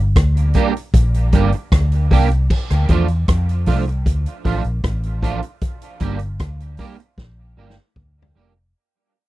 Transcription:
0.00 0.14 G1 loud
0.16 0.53 D2 medium
0.16 kick loud
0.16 cross-stick loud
0.16 closed hi-hat medium
0.37 closed hi-hat soft
0.54 0.71 G3 medium
0.54 0.71 A#3 medium
0.54 0.72 D4 medium
0.54 0.72 G4 medium
0.54 kick medium
0.54 closed hi-hat medium
0.77 closed hi-hat medium
0.94 1.31 A#1 loud
0.94 kick loud
0.94 closed hi-hat medium
1.14 closed hi-hat medium
1.32 1.52 G1 loud
1.32 1.49 G3 medium
1.32 1.49 A#3 medium
1.32 1.49 D4 medium
1.32 1.50 G4 medium
1.32 kick loud
1.32 closed hi-hat medium
1.52 muted clean electric guitar stroke soft
1.52 closed hi-hat soft
1.72 2.09 D2 medium
1.72 kick loud
1.72 cross-stick loud
1.72 closed hi-hat medium
1.92 closed hi-hat soft
2.11 2.48 C2 medium
2.11 2.27 G3 medium
2.11 2.27 A#3 medium
2.11 2.28 D4 medium
2.11 2.28 G4 loud
2.11 kick loud
2.11 open hi-hat medium
2.31 closed hi-hat medium
2.50 kick loud
2.50 crash medium
2.70 2.88 D2 medium
2.70 cross-stick medium
2.70 closed hi-hat medium
2.89 3.26 E2 medium
2.89 3.05 F3 medium
2.89 3.05 A3 medium
2.89 3.06 D4 medium
2.89 3.06 F4 medium
2.89 kick medium
2.89 closed hi-hat medium
3.08 closed hi-hat soft
3.28 3.69 F2 medium
3.28 kick loud
3.28 cross-stick loud
3.28 closed hi-hat medium
3.49 closed hi-hat soft
3.66 4.04 C2 medium
3.66 3.83 F3 medium
3.66 3.83 A3 medium
3.66 3.83 D4 medium
3.66 3.83 F4 medium
3.66 kick medium
3.66 open hi-hat medium
3.88 muted clean electric guitar stroke soft
3.88 closed hi-hat soft
4.06 4.25 D2 loud
4.06 kick loud
4.06 closed hi-hat medium
4.26 closed hi-hat medium
4.45 4.64 A1 medium
4.45 4.61 F3 medium
4.45 4.61 A3 medium
4.45 4.62 D4 medium
4.45 4.62 F4 medium
4.45 kick medium
4.45 open hi-hat soft
4.64 4.83 A#1 medium
4.64 closed hi-hat soft
4.84 5.40 A1 medium
4.84 kick loud
4.84 cross-stick loud
4.84 closed hi-hat medium
5.03 closed hi-hat soft
5.22 5.39 F3 medium
5.22 5.39 A3 medium
5.22 5.39 D4 loud
5.22 5.40 F4 medium
5.22 kick medium
5.22 closed hi-hat medium
5.42 muted clean electric guitar stroke soft
5.42 closed hi-hat medium
5.61 kick loud
5.61 closed hi-hat medium
5.82 closed hi-hat medium
6.00 6.38 G1 loud
6.00 6.17 G3 medium
6.00 6.17 A#3 medium
6.00 6.17 D4 medium
6.00 6.18 G4 medium
6.00 kick medium
6.00 closed hi-hat medium
6.19 closed hi-hat soft
6.39 6.77 D2 medium
6.39 kick loud
6.39 cross-stick loud
6.39 closed hi-hat medium
6.60 closed hi-hat soft
6.77 6.95 G3 medium
6.77 6.95 A#3 medium
6.77 6.95 D4 medium
6.77 6.96 G4 medium
6.77 kick medium
6.77 open hi-hat medium
6.99 muted clean electric guitar stroke soft
6.99 closed hi-hat soft
7.18 7.55 A#1 medium
7.18 kick loud
7.18 snare soft
7.57 7.76 G1 medium
7.57 7.73 G3 medium
7.57 7.73 A#3 medium
7.57 7.74 D4 medium
7.57 7.74 G4 medium
7.70 snare medium
7.96 8.33 D2 medium
7.96 kick loud
7.96 mid tom medium
8.22 floor tom medium
8.35 8.72 F1 medium
8.35 8.51 G3 medium
8.35 8.52 A#3 medium
8.35 8.52 D4 medium
8.35 8.52 G4 medium
8.58 muted clean electric guitar stroke soft

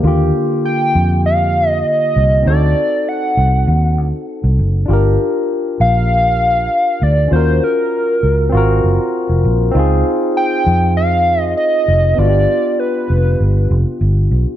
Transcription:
0.00 0.30 D#2 loud
0.00 2.42 D3 medium
0.00 2.40 A#3 medium
0.05 2.43 F4 medium
0.05 2.44 G4 medium
0.65 1.21 G5 medium
0.95 1.82 F2 medium
1.26 1.69 F5 medium
1.69 1.87 D#5 medium
1.87 2.47 D#5 loud
2.16 2.43 C2 medium
2.42 2.73 D2 loud
2.42 4.83 C4 medium
2.42 4.85 D#4 soft
2.47 4.86 F#4 medium
2.47 4.87 A4 medium
2.47 3.10 D5 medium
3.08 3.99 F#5 medium
3.37 3.64 C2 medium
3.67 3.98 D#2 medium
3.98 4.11 D2 medium
4.44 4.57 C2 medium
4.59 4.86 F#1 medium
4.86 5.16 G1 loud
4.86 7.26 D4 medium
4.86 7.28 F4 medium
4.91 7.29 G4 medium
4.91 7.30 A#4 medium
5.80 6.67 A#1 medium
5.80 7.04 F5 loud
7.02 7.29 D2 medium
7.02 7.32 D5 loud
7.28 7.59 D#2 loud
7.28 8.49 C#4 medium
7.28 8.50 F4 soft
7.33 8.52 F#4 medium
7.33 8.53 A#4 medium
7.33 7.65 C5 medium
7.64 8.85 A#4 medium
8.23 8.50 C#2 medium
8.49 8.80 G#1 medium
8.49 9.70 C4 medium
8.49 9.72 F4 medium
8.55 9.73 F#4 medium
8.55 9.74 A#4 medium
8.84 8.97 F#1 medium
9.29 9.43 F1 medium
9.44 9.72 A#1 medium
9.71 10.02 C#2 loud
9.71 12.12 C4 medium
9.71 12.13 D#4 medium
9.77 12.15 F4 medium
9.77 12.16 G#4 medium
10.37 10.93 G5 loud
10.67 11.53 F2 medium
10.97 11.40 F5 loud
11.40 11.53 D#5 loud
11.57 12.20 D#5 loud
11.88 12.15 F1 medium
12.14 14.55 B3 medium
12.14 14.56 D4 medium
12.18 12.45 G1 loud
12.18 14.57 F4 medium
12.18 12.27 F#4 soft
12.18 12.81 D5 loud
12.28 14.57 G4 medium
12.79 13.70 B4 medium
13.10 13.36 F1 medium
13.40 13.67 G1 medium
13.71 13.84 F1 medium
14.01 14.28 G1 medium
14.31 14.44 B1 medium

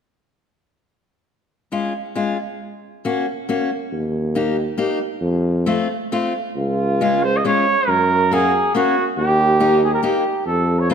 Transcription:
1.72 1.92 G#3 soft
1.72 1.92 C#4 soft
1.72 1.92 F4 medium
2.15 2.36 G#3 medium
2.15 2.36 C#4 soft
2.15 2.36 F4 medium
3.05 3.25 A#3 medium
3.05 3.25 C#4 medium
3.05 3.25 F#4 medium
3.49 3.69 A#3 medium
3.49 3.69 C#4 soft
3.49 3.69 F#4 medium
3.92 4.77 D#2 medium
4.35 4.55 A#3 medium
4.35 4.55 D#4 medium
4.35 4.56 G4 medium
4.78 4.98 A#3 medium
4.78 4.98 D#4 medium
4.78 4.98 G4 medium
5.21 5.79 F2 loud
5.66 5.87 A3 medium
5.66 5.87 C4 medium
5.66 5.87 F4 medium
6.12 6.32 A3 medium
6.12 6.32 C4 medium
6.12 6.32 F4 medium
6.56 7.42 C#2 medium
6.56 7.25 F4 medium
7.01 7.21 G#3 medium
7.01 7.21 C#4 soft
7.01 7.21 F4 medium
7.23 7.38 C5 medium
7.37 7.47 D#5 medium
7.45 7.64 G#3 medium
7.45 7.65 C#4 soft
7.45 7.65 F4 medium
7.45 7.90 C#5 medium
7.88 8.72 F#2 medium
7.88 8.35 A#4 loud
8.31 8.51 A#3 medium
8.31 8.52 C#4 soft
8.31 8.52 F#4 medium
8.31 8.75 G#4 medium
8.75 8.94 A#3 medium
8.75 8.95 C#4 medium
8.75 9.05 F#4 medium
8.75 8.95 F#4 medium
9.17 10.01 D#2 loud
9.17 9.79 G4 medium
9.60 9.80 A#3 medium
9.60 9.80 D#4 medium
9.60 9.80 G4 medium
9.84 9.93 G#4 medium
9.94 9.99 A#4 medium
10.03 10.23 A#3 medium
10.03 10.23 D#4 medium
10.03 10.43 G4 medium
10.03 10.23 G4 medium
10.46 10.94 F2 medium
10.46 10.81 A4 medium
10.80 10.90 C#5 medium
10.90 10.94 A3 medium
10.90 10.94 C4 medium
10.90 10.94 F4 medium

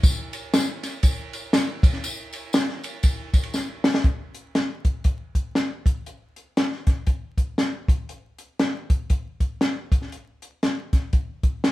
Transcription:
0.03 kick loud
0.03 ride medium
0.03 tambourine loud
0.33 ride medium
0.33 tambourine medium
0.53 snare loud
0.53 ride medium
0.53 tambourine loud
0.83 snare soft
0.83 ride medium
0.83 tambourine medium
1.03 kick medium
1.03 ride medium
1.03 tambourine medium
1.33 ride medium
1.33 tambourine medium
1.53 snare loud
1.53 ride medium
1.53 tambourine medium
1.83 kick loud
1.83 ride medium
1.83 tambourine medium
1.93 snare soft
2.04 ride medium
2.04 tambourine loud
2.32 ride medium
2.32 tambourine medium
2.53 snare loud
2.53 ride medium
2.53 tambourine loud
2.69 snare soft
2.84 ride medium
2.84 tambourine medium
3.03 kick medium
3.03 ride medium
3.03 tambourine medium
3.34 kick medium
3.34 ride medium
3.34 tambourine medium
3.43 ride soft
3.54 snare medium
3.54 tambourine medium
3.84 snare loud
3.84 tambourine soft
3.94 snare medium
4.04 kick loud
4.04 closed hi-hat medium
4.34 closed hi-hat medium
4.55 snare medium
4.55 closed hi-hat medium
4.85 kick medium
4.85 closed hi-hat medium
5.04 kick medium
5.04 closed hi-hat medium
5.35 kick medium
5.35 closed hi-hat medium
5.55 snare medium
5.55 closed hi-hat medium
5.86 kick medium
5.86 closed hi-hat medium
6.06 closed hi-hat medium
6.36 closed hi-hat medium
6.57 snare loud
6.57 closed hi-hat medium
6.72 snare soft
6.87 kick loud
6.87 snare soft
6.87 closed hi-hat medium
7.07 kick medium
7.07 closed hi-hat medium
7.38 kick medium
7.38 closed hi-hat medium
7.58 snare medium
7.58 closed hi-hat medium
7.88 kick loud
7.88 closed hi-hat medium
8.09 closed hi-hat medium
8.38 closed hi-hat medium
8.59 snare loud
8.59 closed hi-hat medium
8.90 kick medium
8.90 closed hi-hat medium
9.10 kick medium
9.10 closed hi-hat medium
9.40 kick medium
9.40 closed hi-hat medium
9.61 snare medium
9.61 closed hi-hat medium
9.92 kick medium
9.92 closed hi-hat medium
10.02 snare soft
10.12 closed hi-hat medium
10.42 closed hi-hat medium
10.63 snare medium
10.63 closed hi-hat medium
10.93 kick medium
10.93 snare soft
10.93 closed hi-hat medium
11.13 kick medium
11.13 closed hi-hat medium
11.43 kick medium
11.43 closed hi-hat medium
11.64 snare loud
11.64 closed hi-hat medium

